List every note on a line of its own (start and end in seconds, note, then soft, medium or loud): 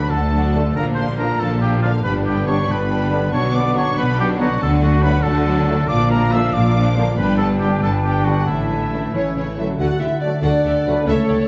0.00 0.78 D3 medium
0.00 0.12 F#3 medium
0.00 0.10 A3 soft
0.00 0.13 A3 soft
0.00 0.12 D4 medium
0.00 1.18 D4 soft
0.00 0.13 F#4 soft
0.00 0.12 B4 medium
0.00 0.11 B5 medium
0.08 0.69 D2 medium
0.08 0.53 A3 soft
0.08 0.19 D4 medium
0.08 0.75 A4 medium
0.08 0.75 A5 medium
0.13 0.69 D2 medium
0.13 0.34 D3 medium
0.13 0.34 A3 medium
0.13 0.34 D4 medium
0.13 0.35 A4 medium
0.13 0.21 F#5 soft
0.31 0.54 F#3 soft
0.31 0.54 A3 soft
0.31 0.41 D4 soft
0.31 0.54 D4 medium
0.31 0.54 F#4 soft
0.31 1.61 D5 soft
0.37 0.43 F#5 medium
0.53 0.61 D3 medium
0.53 0.77 D3 soft
0.53 0.62 A3 medium
0.53 0.78 A3 soft
0.53 0.77 A3 medium
0.53 0.63 D4 soft
0.53 0.77 D4 soft
0.53 0.64 D4 medium
0.53 0.77 A4 medium
0.57 0.64 F#4 medium
0.57 0.64 F#5 medium
0.74 1.33 A#1 medium
0.74 2.06 A#2 medium
0.74 1.34 A#2 medium
0.74 0.96 F3 medium
0.74 0.96 A#3 medium
0.74 0.84 D4 medium
0.74 0.97 D4 soft
0.74 0.96 F4 medium
0.74 0.85 A#4 medium
0.74 0.84 F5 medium
0.74 0.84 A#5 medium
0.95 1.40 F3 soft
0.95 1.18 D4 medium
0.95 1.06 D4 medium
0.95 1.19 A#4 soft
0.95 1.05 C5 medium
0.95 1.19 C6 medium
0.99 1.20 D3 soft
0.99 1.20 A#3 soft
0.99 1.07 F5 soft
1.18 1.26 D3 medium
1.18 1.26 F3 medium
1.18 1.41 F3 medium
1.18 1.40 A#3 medium
1.18 1.28 D4 medium
1.18 2.46 D4 soft
1.18 1.42 D4 soft
1.18 1.28 D4 medium
1.18 1.40 F4 soft
1.18 1.27 F4 medium
1.18 1.41 A#4 medium
1.18 1.27 F5 soft
1.18 1.40 A#5 medium
1.39 1.97 A#1 medium
1.39 1.98 A#2 medium
1.39 1.63 D3 medium
1.39 1.82 F3 soft
1.39 1.63 A#3 soft
1.39 1.49 D4 soft
1.39 1.62 D4 medium
1.39 1.61 A4 medium
1.39 1.62 A#4 medium
1.39 1.63 A5 medium
1.43 1.49 F5 medium
1.61 1.82 F3 medium
1.61 1.81 A#3 soft
1.61 1.82 D4 medium
1.61 1.72 D4 soft
1.61 1.82 F4 soft
1.61 1.82 G4 medium
1.61 2.89 D5 soft
1.61 1.69 F5 soft
1.61 1.71 G5 medium
1.82 1.91 D3 medium
1.82 2.05 D3 soft
1.82 2.06 F3 soft
1.82 1.91 F3 medium
1.82 2.05 A#3 medium
1.82 1.93 D4 medium
1.82 2.05 D4 soft
1.82 1.92 D4 medium
1.82 1.92 F4 medium
1.82 2.05 A#4 soft
1.82 2.04 F5 medium
1.82 1.91 F5 soft
2.04 2.62 G1 medium
2.04 3.35 G2 medium
2.04 2.62 G2 medium
2.04 2.25 G3 soft
2.04 2.24 B3 medium
2.04 2.15 D4 medium
2.04 2.25 D4 soft
2.04 2.24 G4 medium
2.04 2.14 B4 medium
2.04 2.13 G5 medium
2.04 2.14 B5 medium
2.26 2.67 D3 soft
2.26 2.48 D3 soft
2.26 2.48 B3 medium
2.26 2.36 D4 soft
2.26 2.48 D4 medium
2.26 2.46 G4 medium
2.26 2.48 B4 medium
2.26 2.47 G5 medium
2.26 2.35 G5 medium
2.47 2.54 D3 medium
2.47 2.54 G3 medium
2.47 2.69 G3 medium
2.47 2.55 B3 medium
2.47 2.69 B3 soft
2.47 2.55 D4 medium
2.47 3.74 D4 soft
2.47 2.57 D4 medium
2.47 2.70 D4 medium
2.47 2.69 G4 medium
2.47 2.73 C#5 medium
2.47 2.56 G5 soft
2.47 2.69 C#6 medium
2.67 3.25 G1 medium
2.67 3.26 G2 medium
2.67 3.11 D3 soft
2.67 2.90 D3 medium
2.67 2.90 B3 medium
2.67 2.89 D4 medium
2.67 2.79 D4 medium
2.67 2.89 B4 medium
2.67 2.77 G5 medium
2.67 3.33 B5 medium
2.71 3.33 B4 medium
2.89 3.10 G3 medium
2.89 3.10 B3 medium
2.89 3.00 D4 medium
2.89 3.10 D4 medium
2.89 3.10 G4 medium
2.89 4.17 D5 soft
2.89 2.97 G5 medium
3.10 3.19 D3 medium
3.10 3.33 D3 medium
3.10 3.35 D3 soft
3.10 3.18 G3 medium
3.10 3.33 B3 medium
3.10 3.20 B3 medium
3.10 3.32 D4 medium
3.10 3.21 D4 medium
3.10 3.20 D4 medium
3.10 3.32 B4 medium
3.14 3.20 G5 soft
3.32 3.89 B1 medium
3.32 4.62 B2 medium
3.32 3.90 B2 medium
3.32 3.52 F#3 medium
3.32 3.52 B3 medium
3.32 3.42 D4 medium
3.32 3.53 D4 medium
3.32 3.53 F#4 medium
3.32 3.54 C#5 medium
3.32 3.41 F#5 medium
3.32 3.53 C#6 medium
3.53 3.96 F#3 soft
3.53 3.75 B3 medium
3.53 3.64 D4 medium
3.53 3.76 D4 medium
3.53 3.76 B4 medium
3.53 3.75 D5 medium
3.53 3.62 F#5 medium
3.53 3.76 D6 medium
3.74 3.82 D3 medium
3.74 3.82 F#3 medium
3.74 3.97 F#3 medium
3.74 3.82 B3 medium
3.74 3.97 B3 medium
3.74 3.83 D4 medium
3.74 5.02 D4 soft
3.74 3.97 D4 medium
3.74 3.86 D4 medium
3.74 3.97 F#4 medium
3.74 3.82 F#5 soft
3.74 3.97 C#6 medium
3.78 3.98 C#5 medium
3.96 4.53 B1 medium
3.96 4.54 B2 medium
3.96 4.38 F#3 medium
3.96 4.19 B3 medium
3.96 4.06 D4 medium
3.96 4.18 D4 medium
3.96 4.18 B4 medium
3.96 4.04 F#5 medium
3.96 4.19 B5 medium
4.16 4.39 F#3 medium
4.16 4.38 B3 medium
4.16 4.26 D4 medium
4.16 4.38 D4 medium
4.16 4.39 F#4 medium
4.16 5.45 D5 medium
4.16 4.26 F#5 medium
4.16 4.40 G5 medium
4.20 4.29 G4 medium
4.38 4.47 D3 medium
4.38 4.46 F#3 medium
4.38 5.91 F#3 medium
4.38 4.47 B3 medium
4.38 4.62 B3 medium
4.38 4.48 D4 medium
4.38 4.47 D4 medium
4.38 4.61 D4 medium
4.38 4.61 F#4 medium
4.38 4.61 B4 medium
4.38 4.60 F#5 medium
4.38 4.46 F#5 medium
4.60 5.17 D2 medium
4.60 5.91 D3 medium
4.60 5.17 D3 medium
4.60 4.81 F#3 medium
4.60 4.81 D4 medium
4.60 7.14 D4 medium
4.60 4.81 F#4 medium
4.60 4.72 A4 medium
4.60 5.63 F#5 medium
4.60 4.82 A5 medium
4.81 5.03 A3 medium
4.81 5.24 A3 medium
4.81 5.03 D4 medium
4.81 5.03 F#4 medium
4.81 5.04 F#4 medium
4.81 5.03 A4 medium
4.81 5.04 F#5 medium
5.02 5.10 D3 medium
5.02 5.10 F#3 medium
5.02 5.25 F#3 medium
5.02 5.12 A3 medium
5.02 5.25 D4 medium
5.02 5.11 D4 medium
5.02 5.26 F#4 medium
5.02 5.24 B4 medium
5.02 5.25 B5 medium
5.23 5.82 D2 medium
5.23 5.82 D3 medium
5.23 5.67 A3 medium
5.23 5.47 A3 medium
5.23 5.47 F#4 medium
5.23 5.89 A4 medium
5.23 5.47 A4 medium
5.23 5.88 A5 medium
5.27 5.47 D4 medium
5.46 5.67 F#3 medium
5.46 5.67 D4 medium
5.46 5.66 F#4 medium
5.46 6.75 D5 medium
5.67 5.75 D3 medium
5.67 5.75 F#3 medium
5.67 5.75 A3 medium
5.67 5.89 A3 medium
5.67 5.89 D4 medium
5.67 5.76 D4 medium
5.67 5.89 F#4 medium
5.67 5.90 A4 medium
5.88 6.46 A#1 medium
5.88 7.20 A#2 medium
5.88 6.46 A#2 medium
5.88 6.10 F3 medium
5.88 6.10 D4 medium
5.88 6.09 F4 medium
5.88 6.10 D5 loud
5.88 7.17 F5 medium
5.88 6.10 D6 medium
6.11 6.53 F3 medium
6.11 6.33 A#3 medium
6.11 6.33 D4 medium
6.11 6.33 F4 medium
6.11 6.33 A#4 medium
6.11 6.32 A#5 medium
6.32 6.40 D3 medium
6.32 6.39 F3 medium
6.32 6.54 F3 medium
6.32 6.41 A#3 medium
6.32 6.54 D4 medium
6.32 6.40 D4 medium
6.32 6.55 F4 medium
6.32 6.55 E5 loud
6.32 6.54 E6 medium
6.54 7.10 A#1 medium
6.54 7.11 A#2 medium
6.54 6.95 F3 medium
6.54 6.75 A#3 medium
6.54 6.75 D4 medium
6.54 6.75 F4 medium
6.54 6.75 A#4 medium
6.54 6.95 D5 medium
6.54 7.17 D6 medium
6.76 6.96 F3 medium
6.76 6.96 D4 medium
6.76 6.95 F4 medium
6.76 8.03 D5 medium
6.95 7.04 D3 medium
6.95 7.19 F3 soft
6.95 7.04 F3 medium
6.95 7.04 A#3 medium
6.95 7.18 A#3 medium
6.95 7.17 D4 medium
6.95 7.04 D4 medium
6.95 7.18 F4 medium
6.95 7.17 A#4 medium
7.17 7.75 G1 medium
7.17 8.50 G2 medium
7.17 7.75 G2 medium
7.17 7.38 G3 medium
7.17 7.38 B3 medium
7.17 9.14 D4 medium
7.17 7.38 D4 medium
7.17 7.38 G4 medium
7.17 7.37 B4 medium
7.17 8.45 G5 medium
7.17 7.39 B5 medium
7.38 7.81 D3 soft
7.38 7.61 B3 medium
7.38 7.61 D4 medium
7.38 7.48 A4 medium
7.38 7.61 B4 medium
7.38 7.49 A5 medium
7.60 7.69 D3 medium
7.60 7.83 G3 medium
7.60 7.69 G3 medium
7.60 7.83 B3 soft
7.60 7.69 B3 medium
7.60 8.49 D4 soft
7.60 7.83 D4 medium
7.60 7.69 D4 medium
7.60 7.81 G4 medium
7.60 7.83 G4 medium
7.60 7.71 G5 medium
7.83 8.41 G1 medium
7.83 8.41 G2 medium
7.83 8.25 D3 soft
7.83 8.04 B3 medium
7.83 8.05 D4 medium
7.83 7.92 A4 medium
7.83 8.05 B4 soft
7.83 7.93 A5 medium
8.03 8.25 G3 soft
8.03 8.25 B3 soft
8.03 8.25 D4 soft
8.03 8.26 G4 medium
8.03 8.25 G4 soft
8.03 8.50 D5 soft
8.03 8.27 G5 medium
8.24 8.50 D3 soft
8.24 8.34 D3 medium
8.24 8.34 G3 medium
8.24 8.33 B3 soft
8.24 8.48 B3 soft
8.24 8.34 D4 medium
8.24 8.48 D4 soft
8.24 8.46 F#4 medium
8.24 8.48 B4 soft
8.24 8.49 F#5 medium
8.46 9.06 A1 medium
8.46 9.80 A2 medium
8.46 9.06 A2 medium
8.46 8.68 E3 soft
8.46 8.69 A3 soft
8.46 9.54 E4 medium
8.46 8.69 E4 soft
8.46 9.14 E5 medium
8.46 9.14 A5 soft
8.69 9.13 E3 soft
8.69 8.91 E3 soft
8.69 8.90 A3 soft
8.69 8.92 C#4 soft
8.69 8.92 A4 soft
8.91 9.12 E3 soft
8.91 9.00 E3 soft
8.91 9.12 A3 soft
8.91 8.99 A3 soft
8.91 9.00 A3 soft
8.91 9.80 C#4 soft
8.91 9.00 C#4 soft
8.91 9.14 E4 soft
9.12 9.71 A1 soft
9.12 9.34 E3 soft
9.12 9.55 E3 soft
9.12 9.22 E3 medium
9.12 9.34 A3 soft
9.12 9.56 C#4 soft
9.12 9.33 C#4 medium
9.12 9.36 C#4 soft
9.12 9.36 A4 soft
9.12 9.33 C#5 medium
9.12 9.34 C#5 medium
9.35 9.43 C#3 soft
9.35 9.55 E3 soft
9.35 9.55 A3 soft
9.35 9.57 C#4 medium
9.35 9.56 E4 soft
9.35 9.72 A4 soft
9.35 9.57 C#5 medium
9.35 9.57 C#5 soft
9.57 11.00 D3 soft
9.57 9.80 E3 soft
9.57 9.79 E3 soft
9.57 9.65 E3 soft
9.57 9.78 F#3 soft
9.57 9.79 A3 soft
9.57 9.65 A3 soft
9.57 9.65 C#4 soft
9.57 9.79 C#4 soft
9.57 9.67 E4 medium
9.57 9.77 A4 soft
9.57 9.64 E5 soft
9.57 9.66 E5 medium
9.65 10.92 A3 soft
9.69 11.05 F#4 soft
9.73 11.01 A4 soft
9.73 10.38 F#5 soft
9.78 9.86 D2 medium
9.78 9.87 D3 medium
9.78 10.00 F#4 medium
9.78 9.98 A4 medium
9.78 10.39 A4 medium
9.78 9.98 F#5 medium
9.78 10.00 F#5 medium
9.78 9.86 F#5 medium
9.99 10.08 D2 soft
9.99 10.08 D3 soft
9.99 10.21 E4 medium
9.99 10.08 G4 soft
9.99 10.08 E5 soft
9.99 10.21 E5 medium
9.99 10.22 E5 medium
10.21 10.30 F#3 medium
10.21 10.30 A3 medium
10.21 10.31 D4 medium
10.21 10.42 D5 medium
10.21 10.43 D5 medium
10.42 10.51 D2 medium
10.42 10.51 D3 medium
10.42 11.07 D4 medium
10.42 10.51 F#4 medium
10.42 11.06 A4 soft
10.42 10.62 A4 medium
10.42 11.06 D5 medium
10.42 10.83 D5 medium
10.42 10.62 F#5 medium
10.42 11.09 F#5 soft
10.65 10.73 D2 soft
10.65 10.73 D3 soft
10.65 10.73 G4 soft
10.65 10.86 A4 medium
10.65 10.73 E5 soft
10.86 10.94 D2 soft
10.86 11.48 C#3 soft
10.86 10.94 D3 soft
10.86 10.93 F#3 medium
10.86 10.93 A3 medium
10.86 10.94 A4 soft
10.86 11.08 B4 medium
10.86 10.95 F#5 soft
10.93 11.48 A3 soft
10.98 11.48 E4 soft
11.02 11.48 A4 soft
11.06 11.16 C#2 medium
11.06 11.16 C#3 medium
11.06 11.48 A3 medium
11.06 11.48 A4 medium
11.06 11.28 A4 medium
11.06 11.48 C#5 medium
11.06 11.48 E5 medium
11.06 11.28 E5 medium
11.29 11.38 C#2 soft
11.29 11.37 C#3 soft
11.29 11.38 G4 soft
11.29 11.37 D5 soft